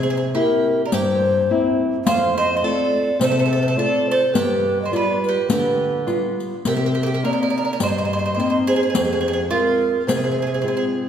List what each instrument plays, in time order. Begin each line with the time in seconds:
Already playing: nylon-string guitar C3
0.02 mandolin G#4, shakuhachi C5
0.10 mandolin G#4, shakuhachi C5
0.16 mandolin G#4, shakuhachi C5
0.34 nylon-string guitar A#3 C4 E4, mandolin G4, shakuhachi A#4
0.85 mandolin A#4, shakuhachi D5
0.92 nylon-string guitar G2, mandolin G4, shakuhachi C5, riq
1.50 nylon-string guitar A#3 C4 E4
2.05 nylon-string guitar F2, mandolin C5, shakuhachi F5, riq
2.37 mandolin C5, shakuhachi D#5
2.54 mandolin C5, shakuhachi D#5
2.62 nylon-string guitar A3 C4 F4, mandolin A4, shakuhachi D5
3.19 nylon-string guitar C3, shakuhachi C5, riq
3.24 mandolin A4
3.29 mandolin A4, shakuhachi C5
3.38 mandolin A4, shakuhachi C5
3.46 mandolin A4, shakuhachi C5
3.53 mandolin A4, shakuhachi C5
3.62 mandolin A4, shakuhachi C5
3.68 mandolin A4, shakuhachi C5
3.76 nylon-string guitar A3 C4 F4, mandolin A4, shakuhachi D5
4.10 mandolin A4, shakuhachi C5
4.34 nylon-string guitar G2, mandolin G4, shakuhachi B4, riq
4.82 mandolin C5, shakuhachi D#5
4.91 nylon-string guitar G3 B3 F4, shakuhachi D5, riq
4.96 mandolin B4
5.24 shakuhachi B4, riq
5.29 mandolin G4
5.49 nylon-string guitar D3, mandolin G4, shakuhachi B4, riq
6.06 nylon-string guitar G3 B3 F4, riq
6.40 riq
6.65 nylon-string guitar C3, mandolin G4, shakuhachi A#4, riq
6.76 mandolin G4, shakuhachi A#4
6.82 mandolin G4, shakuhachi A#4
6.91 mandolin G4, shakuhachi A#4
7.02 mandolin G4, shakuhachi A#4
7.06 mandolin G4, shakuhachi A#4
7.12 mandolin G4, shakuhachi A#4
7.23 nylon-string guitar A#3 C4 D#4, mandolin A#4, shakuhachi D5
7.33 mandolin A#4, shakuhachi D5
7.42 mandolin A#4, shakuhachi D5
7.50 mandolin A#4, shakuhachi D5
7.58 mandolin A#4, shakuhachi D5
7.65 mandolin A#4, shakuhachi D5
7.72 mandolin A#4, shakuhachi D5
7.79 nylon-string guitar G2, mandolin C5, shakuhachi D#5, riq
7.88 mandolin C5, shakuhachi D#5
7.98 mandolin C5, shakuhachi D#5
8.05 mandolin C5, shakuhachi D#5
8.13 mandolin C5, shakuhachi D#5
8.19 mandolin C5, shakuhachi D#5
8.25 mandolin C5, shakuhachi D#5
8.34 nylon-string guitar A#3 C4 D#4, mandolin C5, shakuhachi D#5
8.40 mandolin C5, shakuhachi D#5
8.50 mandolin C5, shakuhachi D#5
8.67 mandolin G#4, shakuhachi C5
8.76 mandolin G#4, shakuhachi C5
8.83 mandolin G#4, shakuhachi C5
8.90 mandolin G#4, shakuhachi C5
8.94 nylon-string guitar F2, mandolin G#4, shakuhachi C5, riq
9.05 mandolin G#4, shakuhachi C5
9.12 mandolin G#4, shakuhachi C5
9.21 mandolin G#4, shakuhachi C5
9.28 mandolin G#4, shakuhachi C5
9.33 mandolin G#4, shakuhachi C5
9.49 nylon-string guitar G#3 C4 F4, mandolin F4, shakuhachi A#4
10.07 nylon-string guitar C3, mandolin G#4, shakuhachi C5, riq
10.16 mandolin G#4, shakuhachi C5
10.23 mandolin G#4, shakuhachi C5
10.31 mandolin G#4, shakuhachi C5
10.39 mandolin G#4, shakuhachi C5
10.47 mandolin G#4, shakuhachi C5
10.53 mandolin G#4, shakuhachi C5
10.59 nylon-string guitar G#3, mandolin G#4, shakuhachi C5
10.64 nylon-string guitar C4 F4
10.68 mandolin G#4, shakuhachi C5
10.76 mandolin G#4, shakuhachi C5